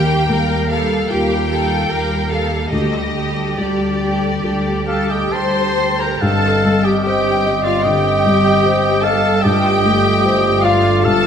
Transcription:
0.00 0.20 D#2 medium
0.00 2.68 D#2 medium
0.00 0.28 G3 medium
0.00 0.28 G4 soft
0.00 0.30 G4 medium
0.00 0.28 A#4 soft
0.00 0.28 F5 soft
0.00 0.67 G5 medium
0.29 1.01 D#2 medium
0.29 0.69 G3 soft
0.29 1.57 A#3 soft
0.29 0.68 G4 soft
0.29 0.68 A#4 soft
0.29 0.70 A#4 medium
0.29 0.68 F5 soft
0.69 1.08 G3 soft
0.69 1.08 G4 soft
0.69 1.09 A4 medium
0.69 1.08 A#4 soft
0.69 1.08 F5 medium
0.69 1.07 F5 soft
1.09 1.80 D#2 medium
1.09 1.48 G3 soft
1.09 2.69 F4 soft
1.09 1.49 G4 soft
1.09 2.69 G4 soft
1.09 1.50 G4 medium
1.09 1.47 A#4 soft
1.09 1.48 F5 soft
1.09 2.30 G5 medium
1.49 1.89 G3 soft
1.49 1.89 G4 soft
1.49 1.90 A4 soft
1.49 1.88 A#4 soft
1.49 1.88 F5 soft
1.89 2.63 D#2 medium
1.89 2.30 G3 soft
1.89 2.29 G4 soft
1.89 2.28 A#4 soft
1.89 2.31 A#4 medium
1.89 2.29 F5 soft
2.30 2.72 G3 soft
2.30 2.71 G4 soft
2.30 2.72 A4 soft
2.30 2.71 A#4 soft
2.30 2.72 F5 medium
2.30 2.71 F5 soft
2.70 6.18 D2 soft
2.70 3.49 D2 medium
2.70 3.15 G3 soft
2.70 3.12 G4 soft
2.70 5.79 G4 soft
2.70 3.15 G4 soft
2.70 3.13 A4 soft
2.70 3.56 D#5 medium
3.14 3.58 G3 soft
3.14 3.57 G4 soft
3.14 3.58 G4 soft
3.14 3.57 A4 soft
3.58 4.34 D2 soft
3.58 4.97 G3 soft
3.58 4.01 G3 soft
3.58 4.00 G4 soft
3.58 4.00 A4 soft
3.58 4.88 D5 soft
4.01 4.42 G3 soft
4.01 4.42 G4 soft
4.01 4.43 G4 soft
4.01 4.42 A4 soft
4.43 5.24 D2 soft
4.43 4.87 G3 soft
4.43 4.86 G4 soft
4.43 6.19 G4 soft
4.43 4.87 G4 soft
4.43 4.86 A4 soft
4.43 6.19 A4 soft
4.87 5.34 G3 soft
4.87 5.10 G4 soft
4.87 5.11 G4 soft
4.87 5.33 A4 soft
4.87 5.13 A4 medium
4.87 5.10 A4 medium
4.87 5.12 F5 medium
4.87 5.09 A5 medium
5.10 5.33 G4 soft
5.10 5.35 G4 medium
5.10 5.34 G4 soft
5.10 5.33 D#5 soft
5.10 5.34 G5 medium
5.32 6.12 D2 soft
5.32 5.78 G3 soft
5.32 5.77 G4 soft
5.32 5.78 G4 soft
5.32 5.77 A4 soft
5.32 6.02 C5 medium
5.32 6.01 C5 medium
5.32 6.02 C5 medium
5.32 6.02 A5 medium
5.32 6.00 C6 medium
5.78 6.22 G3 soft
5.78 6.21 G4 soft
5.78 6.22 G4 soft
5.78 6.20 A4 soft
5.99 6.22 A#4 soft
5.99 6.23 A#4 soft
5.99 6.23 G5 soft
5.99 6.22 A#5 medium
6.21 11.27 G1 medium
6.21 7.80 G2 soft
6.21 11.27 G2 medium
6.21 9.39 C4 medium
6.21 6.83 A4 medium
6.21 6.86 A4 medium
6.21 6.84 A4 medium
6.21 9.39 D#5 medium
6.21 6.86 F5 medium
6.21 6.83 A5 medium
6.65 7.30 G3 soft
6.82 7.02 G4 soft
6.82 7.03 G4 medium
6.82 7.05 G4 medium
6.82 7.04 D#5 medium
6.82 7.02 G5 medium
7.03 7.63 G4 medium
7.03 7.67 G4 medium
7.03 7.64 G4 medium
7.03 7.70 C5 soft
7.03 7.65 D#5 medium
7.03 7.63 G5 medium
7.46 8.09 D#5 soft
7.63 7.84 F4 medium
7.63 7.86 F4 medium
7.63 7.85 F4 medium
7.63 7.86 D5 medium
7.63 7.84 F5 medium
7.82 9.03 G4 medium
7.82 9.06 G4 medium
7.82 9.05 D#5 medium
7.82 9.02 G5 medium
7.86 8.49 D3 soft
7.86 9.04 G4 medium
8.26 8.88 G3 soft
8.66 9.28 C5 soft
9.02 9.43 A4 medium
9.02 9.44 D#5 soft
9.02 9.44 F5 medium
9.02 9.43 A5 medium
9.41 11.01 G2 medium
9.41 11.27 A3 medium
9.41 11.27 F4 medium
9.41 10.61 G4 medium
9.41 10.64 G4 medium
9.41 10.66 G4 medium
9.41 10.66 D#5 medium
9.41 10.63 G5 medium
9.85 10.48 A3 soft
10.26 10.89 C5 soft
10.62 11.04 F4 medium
10.62 11.06 F4 medium
10.62 11.07 D5 medium
10.62 11.04 F5 medium
10.62 11.27 F5 soft
11.04 11.27 G2 soft
11.04 11.27 A4 medium
11.04 11.27 F5 medium
11.04 11.27 A5 medium

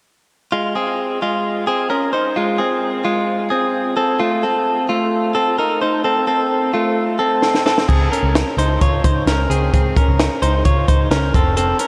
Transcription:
0.52 0.75 G#3 medium
0.52 0.75 F4 medium
0.75 1.19 C4 soft
0.75 1.18 G#4 medium
1.22 1.65 G#3 soft
1.22 1.65 F4 medium
1.67 1.90 C4 medium
1.67 1.89 G#4 medium
1.90 2.13 C#4 medium
1.90 2.13 A#4 medium
2.13 2.36 D#4 soft
2.13 2.36 C5 medium
2.36 2.60 G#3 medium
2.36 2.59 F4 medium
2.58 3.02 C4 medium
2.58 3.02 G#4 medium
3.05 3.48 G#3 soft
3.05 3.48 F4 medium
3.50 3.95 C4 medium
3.50 3.94 G#4 medium
3.97 4.20 C4 soft
3.97 4.20 A4 medium
4.20 4.43 A3 medium
4.20 4.43 F4 medium
4.43 4.87 C4 medium
4.43 4.86 A4 medium
4.89 5.33 A3 soft
4.89 5.32 F4 medium
5.35 5.58 C4 medium
5.35 5.58 A4 medium
5.58 5.81 D#4 medium
5.58 5.81 A#4 medium
5.81 6.05 D#4 soft
5.81 6.04 C5 medium
6.04 6.27 C4 medium
6.04 6.26 A4 medium
6.27 6.71 C4 medium
6.27 6.71 A4 medium
6.74 7.17 A3 soft
6.74 7.17 F4 medium
7.19 7.63 C4 medium
7.19 7.63 A4 medium
7.42 snare soft
7.55 snare medium
7.66 7.88 C4 soft
7.66 7.88 A4 medium
7.66 snare medium
7.78 snare medium
7.89 8.08 C#2 medium
7.89 8.12 C4 medium
7.89 8.11 G#4 medium
7.89 kick medium
7.89 crash medium
8.12 8.55 C#4 soft
8.12 8.55 A#4 medium
8.12 closed hi-hat medium
8.23 8.42 C#2 medium
8.35 snare loud
8.35 closed hi-hat medium
8.57 8.76 C#2 medium
8.57 8.81 D#4 soft
8.57 8.81 C5 medium
8.57 closed hi-hat medium
8.81 9.00 C#2 medium
8.81 9.05 F4 medium
8.81 9.04 C#5 medium
8.81 kick medium
8.81 closed hi-hat medium
9.04 9.23 C#2 medium
9.04 9.28 D#4 medium
9.04 9.27 C5 medium
9.04 kick medium
9.04 closed hi-hat medium
9.26 9.45 C#2 medium
9.26 9.51 C#4 medium
9.26 9.50 A#4 medium
9.26 snare medium
9.26 closed hi-hat medium
9.50 9.69 C#2 medium
9.50 9.73 C4 medium
9.50 9.73 G#4 medium
9.50 closed hi-hat medium
9.73 9.92 C#2 medium
9.73 9.97 C4 medium
9.73 9.96 G#4 medium
9.73 kick medium
9.73 closed hi-hat medium
9.96 10.40 C#4 soft
9.96 10.40 A#4 medium
9.96 kick medium
9.96 closed hi-hat medium
10.08 10.27 C#2 medium
10.19 snare loud
10.19 closed hi-hat medium
10.42 10.61 C#2 medium
10.42 10.66 D#4 medium
10.42 10.65 C5 medium
10.42 closed hi-hat medium
10.65 10.84 C#2 medium
10.65 10.89 F4 medium
10.65 10.88 C#5 medium
10.65 kick medium
10.65 closed hi-hat medium
10.88 11.07 C#2 medium
10.88 11.12 D#4 medium
10.88 11.11 C5 medium
10.88 kick medium
10.88 closed hi-hat medium
11.11 11.30 C#2 medium
11.11 11.35 C#4 medium
11.11 11.34 A#4 medium
11.11 snare loud
11.11 closed hi-hat medium
11.34 11.72 F1 medium
11.34 11.57 C4 medium
11.34 11.56 A4 medium
11.34 kick medium
11.34 closed hi-hat medium
11.57 11.80 C4 medium
11.57 11.79 A4 medium
11.57 closed hi-hat medium
11.79 11.87 C#4 soft
11.79 11.87 A#4 medium
11.79 closed hi-hat medium

